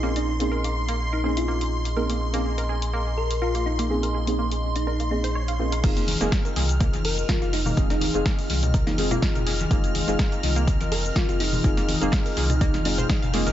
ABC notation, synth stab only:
X:1
M:4/4
L:1/16
Q:"Swing 16ths" 1/4=124
K:Fphr
V:1 name="Synth stab"
[B,CDEA]3 [B,CDEA]6- [B,CDEA] [B,CDEA]6 | [B,CDEA]3 [B,CDEA]12- [B,CDEA] | [B,CDEA]3 [B,CDEA]6- [B,CDEA] [B,CDEA]4 [B,CDEA] z | [A,CEFA]3 [A,CEFA]12- [A,CEFA] |
[A,CEFA]3 [A,CEFA]6- [A,CEFA] [A,CEFA]6 | [A,CEFA]3 [A,CEFA]12- [A,CEFA] | [A,CEFA]3 [A,CEFA]6- [A,CEFA] [A,CEFA]4 [A,CEFA] z |]